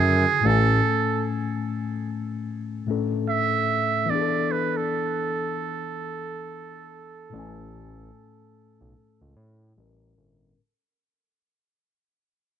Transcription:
0.00 0.25 F#2 loud
0.00 0.39 C#3 medium
0.00 0.38 D3 medium
0.00 0.41 E4 medium
0.00 0.42 F#4 medium
0.00 0.48 G#4 medium
0.40 2.81 A2 medium
0.40 2.83 A3 medium
0.45 0.81 A1 medium
0.45 2.84 C#4 medium
0.45 1.26 A4 medium
0.49 2.86 G#5 medium
2.87 4.08 A2 medium
2.87 4.09 A3 medium
2.87 4.10 C#4 medium
2.91 4.11 A4 medium
3.29 4.11 E5 loud
4.06 7.27 E3 medium
4.06 7.29 B3 medium
4.10 7.31 D4 medium
4.10 4.53 D5 medium
4.15 4.20 G#4 medium
4.21 7.35 A4 medium
4.51 4.78 B4 medium
4.77 9.77 A4 medium
7.30 9.71 A2 medium
7.30 9.72 A3 medium
7.34 8.10 A1 loud
7.34 9.74 C#4 medium
7.39 9.75 G#5 medium
8.81 8.94 B1 medium
9.21 9.35 C#2 medium
9.37 9.73 A2 loud
9.75 10.14 A1 loud
9.75 10.57 A2 medium
9.75 10.58 G3 medium
9.75 10.59 C#4 medium
9.80 10.59 A#4 medium
10.18 10.54 G1 medium

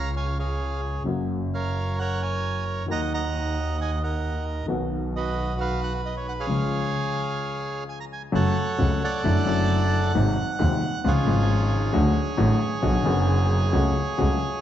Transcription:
0.00 0.97 C#2 medium
0.00 0.97 C#3 medium
0.00 0.97 F3 medium
0.00 0.97 G#3 soft
0.00 0.98 F4 medium
0.00 0.15 C#5 medium
0.00 0.15 F5 medium
0.00 0.11 A#5 medium
0.16 0.38 C#5 medium
0.16 0.38 F5 medium
0.16 0.26 G#5 medium
0.39 1.03 G#4 medium
0.39 1.03 C#5 soft
0.39 0.81 F5 medium
1.04 2.80 F#1 medium
1.04 2.80 F#2 medium
1.04 2.79 C#3 medium
1.04 2.80 F#3 medium
1.04 2.81 A#3 soft
1.08 2.81 F#4 medium
1.54 1.99 A#4 medium
1.54 1.99 C#5 medium
1.54 1.96 F5 medium
1.99 2.87 A#4 medium
1.99 2.22 C#5 medium
1.99 2.22 F#5 medium
2.22 2.87 C#5 medium
2.22 2.64 G#5 medium
2.86 4.60 D#2 medium
2.86 4.61 D#2 medium
2.86 4.60 D#3 medium
2.86 4.60 F#3 soft
2.86 4.60 A#3 medium
2.86 4.61 F#4 medium
2.91 3.13 D#5 medium
2.91 3.13 F#5 medium
2.91 3.01 A#5 loud
3.14 3.80 D#5 medium
3.14 3.99 F#5 medium
3.14 3.77 A#5 medium
3.81 4.02 D#5 medium
3.81 3.91 G#5 medium
4.03 4.66 A#4 medium
4.03 4.66 D#5 medium
4.03 4.45 F#5 medium
4.66 6.39 B1 medium
4.66 6.40 B1 medium
4.66 6.39 B2 medium
4.66 6.38 D#3 medium
4.66 6.39 F#3 medium
4.66 6.40 B3 soft
4.66 6.40 F#4 medium
5.16 6.01 F#4 medium
5.16 5.60 B4 medium
5.16 5.57 D#5 medium
5.61 6.46 B4 medium
5.61 5.81 F5 loud
5.83 5.93 F#5 medium
6.06 6.15 D#5 medium
6.17 6.27 C#5 medium
6.29 6.33 F#5 medium
6.40 7.83 G#4 medium
6.40 7.84 C#5 medium
6.40 7.84 F5 medium
6.47 8.24 C#2 medium
6.47 8.24 C#3 medium
6.47 8.23 F3 medium
6.47 8.24 G#3 medium
6.47 8.24 F4 medium
7.89 7.99 G#5 medium
8.00 8.05 A#5 medium
8.13 8.22 G#5 medium
8.32 8.53 F#1 medium
8.32 8.52 F#2 medium
8.32 8.52 C#3 medium
8.32 8.52 F#3 medium
8.32 8.52 A3 medium
8.32 8.52 F#4 medium
8.32 9.02 A4 medium
8.32 9.22 C#5 medium
8.32 9.03 F#5 loud
8.78 8.98 C#2 medium
8.78 8.98 C#3 medium
8.78 8.98 F#3 medium
8.78 8.98 A3 medium
8.78 8.98 F#4 medium
9.04 10.12 A4 medium
9.04 10.12 D5 medium
9.04 11.12 F#5 loud
9.24 9.43 F#1 medium
9.24 9.44 F#2 medium
9.24 9.43 D3 medium
9.24 9.44 F#3 medium
9.24 9.44 A3 medium
9.24 9.44 E4 medium
9.45 10.11 F#1 medium
9.45 10.11 F#2 medium
9.45 10.10 D3 medium
9.45 10.11 F#3 medium
9.45 10.12 A3 medium
9.49 10.12 E4 medium
10.14 10.34 G#1 loud
10.14 10.34 G#1 medium
10.14 10.34 G#2 medium
10.14 10.34 C3 medium
10.14 10.34 F#3 medium
10.14 10.34 G#3 medium
10.14 10.34 D#4 medium
10.59 10.78 D#1 medium
10.59 10.78 D#2 medium
10.59 10.79 D#2 medium
10.59 10.78 C3 medium
10.59 10.78 F#3 medium
10.59 10.79 G#3 medium
10.59 10.79 D#4 medium
11.04 11.23 C#2 medium
11.04 11.24 C#2 medium
11.04 11.23 C#3 medium
11.04 11.24 F3 medium
11.04 11.24 G#3 medium
11.04 11.24 F4 medium
11.04 11.92 F4 medium
11.04 14.61 G#4 medium
11.04 14.61 C#5 loud
11.24 11.91 G#1 medium
11.24 11.91 G#1 loud
11.24 11.91 G#2 medium
11.24 11.90 C#3 medium
11.24 11.90 F3 medium
11.24 11.91 G#3 medium
11.28 11.92 F4 medium
11.93 12.13 D2 medium
11.93 12.13 D2 loud
11.93 12.13 D3 medium
11.93 12.13 F#3 medium
11.93 12.13 A3 medium
11.93 12.13 F#4 medium
12.37 12.57 A1 medium
12.37 12.58 A1 loud
12.37 12.57 A2 medium
12.37 12.57 D3 medium
12.37 12.57 F#3 medium
12.37 12.57 A3 medium
12.37 12.58 F#4 medium
12.82 13.02 B1 medium
12.82 13.03 B1 medium
12.82 13.02 B2 medium
12.82 13.02 D3 medium
12.82 13.02 F#3 medium
12.82 13.02 B3 medium
12.82 13.02 F#4 medium
13.03 13.70 F#1 loud
13.03 13.71 F#1 loud
13.03 13.70 F#2 medium
13.03 13.69 D3 medium
13.03 13.70 F#3 medium
13.03 13.70 B3 medium
13.07 13.71 F#4 medium
13.73 13.92 C#2 medium
13.73 13.93 C#2 medium
13.73 13.92 C#3 medium
13.73 13.92 F#3 medium
13.73 13.92 A3 medium
13.73 13.93 F#4 medium
14.18 14.38 C#2 medium
14.18 14.39 C#2 medium
14.18 14.38 C#3 medium
14.18 14.38 F#3 medium
14.18 14.38 A3 medium
14.18 14.38 F#4 medium

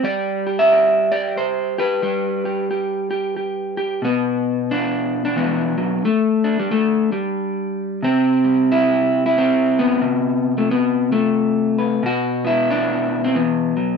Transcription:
0.04 2.01 G3 medium
0.04 0.71 D5 loud
0.47 1.12 G4 medium
0.59 1.79 E5 loud
0.72 1.11 D5 medium
1.12 1.77 G4 medium
1.12 1.37 D5 loud
1.37 1.79 C5 loud
1.78 2.01 G4 medium
1.78 4.04 B4 medium
2.02 4.03 G3 medium
2.02 2.44 G4 medium
2.45 2.69 G4 soft
2.71 3.09 G4 medium
3.11 3.35 G4 medium
3.37 3.76 G4 soft
3.77 4.00 G4 medium
4.02 6.00 B2 medium
4.02 5.35 B3 loud
4.71 5.24 D4 loud
5.25 6.04 D4 medium
5.36 5.77 E3 medium
5.36 6.03 B3 medium
5.78 6.03 F#3 medium
6.05 6.59 A3 loud
6.44 8.00 D4 medium
6.59 6.71 G3 medium
6.71 7.12 A3 medium
7.12 8.04 G3 medium
8.03 10.00 C3 medium
8.03 9.37 C4 loud
8.44 9.78 G3 medium
8.72 9.25 E4 loud
9.26 10.04 E4 medium
9.38 10.04 C4 loud
9.79 10.57 B3 loud
10.02 11.99 C3 medium
10.58 10.70 A3 medium
10.71 11.12 B3 medium
11.12 12.03 A3 medium
11.78 13.27 B4 soft
12.03 13.97 B2 medium
12.03 12.46 F#4 loud
12.45 13.34 B3 medium
12.45 13.37 E4 loud
12.71 13.24 D4 loud
13.24 13.36 C4 medium
13.35 13.76 E3 medium
13.35 13.97 B3 medium
13.77 13.97 F#3 medium

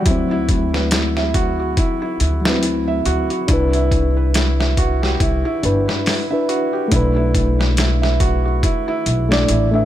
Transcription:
0.02 1.74 D2 medium
0.02 2.37 F#3 medium
0.02 2.39 E4 medium
0.02 kick loud
0.02 closed hi-hat medium
0.06 0.30 E4 medium
0.11 2.41 C4 medium
0.31 0.48 E4 medium
0.49 0.63 E4 medium
0.49 kick medium
0.49 closed hi-hat medium
0.74 0.90 B4 medium
0.74 snare medium
0.91 1.14 E4 medium
0.91 snare loud
0.91 closed hi-hat medium
1.17 1.33 E5 medium
1.17 snare soft
1.34 1.57 F#4 loud
1.34 kick medium
1.34 closed hi-hat medium
1.59 1.76 F#4 medium
1.77 2.00 E4 medium
1.77 kick loud
1.77 closed hi-hat medium
2.02 2.18 E4 medium
2.20 3.03 D2 medium
2.20 2.34 E4 medium
2.20 closed hi-hat medium
2.41 3.43 F#3 medium
2.41 3.45 E4 medium
2.41 2.61 B4 medium
2.45 3.47 C4 medium
2.45 snare loud
2.63 2.85 E4 medium
2.63 closed hi-hat medium
2.88 3.04 E5 medium
3.05 3.27 D2 medium
3.05 3.28 F#4 loud
3.05 closed hi-hat medium
3.30 3.47 F#4 medium
3.30 closed hi-hat soft
3.48 5.17 C2 loud
3.48 5.58 D4 medium
3.48 3.72 E4 medium
3.48 5.60 E4 medium
3.48 kick loud
3.48 closed hi-hat medium
3.53 5.61 B4 medium
3.73 3.91 E4 medium
3.73 closed hi-hat soft
3.92 4.06 E4 medium
3.92 kick medium
3.92 closed hi-hat medium
4.17 4.33 B4 medium
4.34 4.57 E4 medium
4.34 snare loud
4.34 closed hi-hat medium
4.60 4.76 E5 medium
4.60 snare medium
4.77 5.00 F#4 medium
4.77 kick medium
4.77 closed hi-hat medium
5.02 5.19 G4 medium
5.02 snare soft
5.20 5.42 C2 medium
5.20 5.44 E4 medium
5.20 kick loud
5.20 closed hi-hat medium
5.45 5.62 E4 medium
5.63 5.85 G1 medium
5.63 6.24 D4 medium
5.63 5.77 E4 medium
5.63 6.25 E4 medium
5.63 6.26 B4 medium
5.63 closed hi-hat medium
5.88 6.04 B4 medium
5.88 snare soft
6.06 6.28 E4 medium
6.06 snare loud
6.06 open hi-hat medium
6.30 6.87 D4 medium
6.30 6.88 E4 medium
6.30 6.89 B4 medium
6.30 6.47 E5 medium
6.49 6.71 F#4 loud
6.49 closed hi-hat medium
6.73 6.90 G4 medium
6.88 9.23 A3 medium
6.88 7.15 E4 medium
6.88 kick loud
6.88 closed hi-hat medium
6.92 8.60 B1 loud
6.92 9.25 D4 medium
6.96 9.27 B4 medium
7.16 7.33 E4 medium
7.35 7.49 E4 medium
7.35 kick medium
7.35 closed hi-hat medium
7.59 7.76 B4 medium
7.59 snare soft
7.77 8.00 E4 medium
7.77 snare loud
7.77 closed hi-hat medium
8.02 8.18 E5 medium
8.02 snare soft
8.20 8.42 F#4 loud
8.20 kick medium
8.20 closed hi-hat medium
8.45 8.61 F#4 medium
8.63 8.86 E4 medium
8.63 kick loud
8.63 closed hi-hat medium
8.88 9.05 E4 loud
9.06 9.49 B1 medium
9.06 9.28 E4 medium
9.06 closed hi-hat medium
9.29 9.66 A3 medium
9.29 9.68 D4 medium
9.29 9.47 E4 medium
9.29 snare loud
9.33 9.69 D5 loud
9.48 9.85 A1 medium
9.48 9.72 E4 medium
9.48 closed hi-hat medium
9.71 9.85 E3 loud
9.71 9.85 A3 medium
9.71 9.85 D4 medium
9.75 9.85 E5 medium

